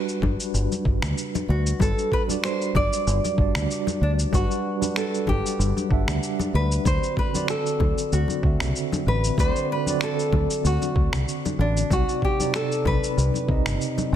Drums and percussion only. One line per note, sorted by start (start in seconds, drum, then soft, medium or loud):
0.09 shaker soft
0.22 kick medium
0.22 high bongo medium
0.22 high conga loud
0.40 shaker medium
0.55 shaker medium
0.72 high conga medium
0.72 shaker soft
0.85 kick loud
1.02 finger snap medium
1.02 low conga medium
1.02 shaker medium
1.18 shaker medium
1.35 high bongo soft
1.35 high conga medium
1.35 shaker soft
1.48 high bongo soft
1.67 shaker medium
1.80 kick loud
1.80 high conga loud
1.80 shaker medium
1.98 shaker soft
2.12 kick medium
2.29 high conga medium
2.29 shaker medium
2.44 finger snap medium
2.44 shaker medium
2.62 shaker soft
2.75 kick loud
2.75 high bongo medium
2.75 high conga loud
2.93 shaker medium
3.07 shaker medium
3.25 high conga medium
3.25 shaker soft
3.38 kick loud
3.55 finger snap medium
3.55 low conga medium
3.55 shaker medium
3.71 shaker medium
3.87 high conga loud
3.87 shaker soft
4.19 shaker medium
4.33 kick loud
4.33 high conga medium
4.33 shaker medium
4.51 shaker soft
4.82 high conga medium
4.82 shaker medium
4.96 finger snap medium
4.96 shaker medium
5.14 shaker soft
5.27 kick medium
5.27 high bongo medium
5.27 high conga medium
5.46 shaker medium
5.61 shaker medium
5.77 high conga medium
5.77 shaker soft
5.91 kick loud
6.08 finger snap medium
6.08 high bongo medium
6.08 low conga medium
6.08 shaker medium
6.23 shaker medium
6.39 high bongo medium
6.39 high conga medium
6.39 shaker soft
6.54 high bongo soft
6.72 shaker medium
6.85 kick loud
6.85 high conga medium
6.85 shaker medium
7.03 shaker soft
7.17 kick medium
7.35 high conga medium
7.35 shaker medium
7.48 finger snap medium
7.48 shaker medium
7.66 shaker soft
7.80 kick loud
7.80 high bongo medium
7.80 high conga medium
7.98 shaker medium
8.13 shaker medium
8.28 high conga medium
8.28 shaker soft
8.43 kick loud
8.60 finger snap medium
8.60 low conga medium
8.60 shaker medium
8.76 shaker medium
8.92 high conga loud
8.92 shaker soft
9.24 shaker medium
9.38 kick loud
9.38 high conga medium
9.38 shaker medium
9.56 shaker soft
9.86 high conga medium
9.86 shaker medium
10.01 finger snap medium
10.01 shaker medium
10.19 shaker soft
10.33 kick medium
10.33 high bongo medium
10.33 high conga medium
10.51 shaker medium
10.65 shaker soft
10.82 high conga medium
10.82 shaker soft
10.96 kick loud
11.13 finger snap medium
11.13 low conga medium
11.13 shaker medium
11.28 shaker medium
11.45 high bongo soft
11.45 high conga medium
11.45 shaker soft
11.59 high bongo soft
11.77 shaker medium
11.91 kick loud
11.91 high conga medium
11.91 shaker medium
12.09 shaker soft
12.22 kick medium
12.40 high conga medium
12.40 shaker medium
12.54 finger snap medium
12.54 shaker medium
12.72 shaker soft
12.85 kick medium
12.85 high bongo medium
12.85 high conga medium
13.04 shaker medium
13.18 shaker soft
13.34 high conga medium
13.34 shaker soft
13.49 kick loud
13.66 finger snap medium
13.66 low conga medium
13.66 shaker medium
13.81 shaker medium
13.98 high conga medium
13.98 shaker soft